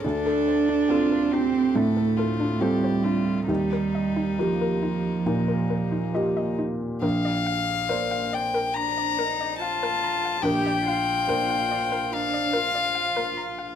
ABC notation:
X:1
M:4/4
L:1/16
Q:1/4=70
K:Bb
V:1 name="Synth pluck"
D A c D A A D z D A A D c c D z | E B e E B B E z E B B E e e E z | B d f z B f d B b d B d f B b f | B d f z B f d B b d B d f B b f |]
V:2 name="Violin"
A4 F2 G2 A2 F2 G2 F2 | E12- E2 z2 | f6 g2 b4 a4 | g8 f8 |]
V:3 name="Cello"
D6 C2 A,4 G,4 | G,4 F,8- F,2 z2 | z8 D2 E2 F4 | G2 F6 D2 F6 |]
V:4 name="Upright piano"
D,,4 [CFA]4 A,,4 [CFA]4 | E,,4 [B,FG]4 B,,4 [B,FG]4 | B,,,4 [B,cd]12 | B,,,4 [B,Dc]12 |]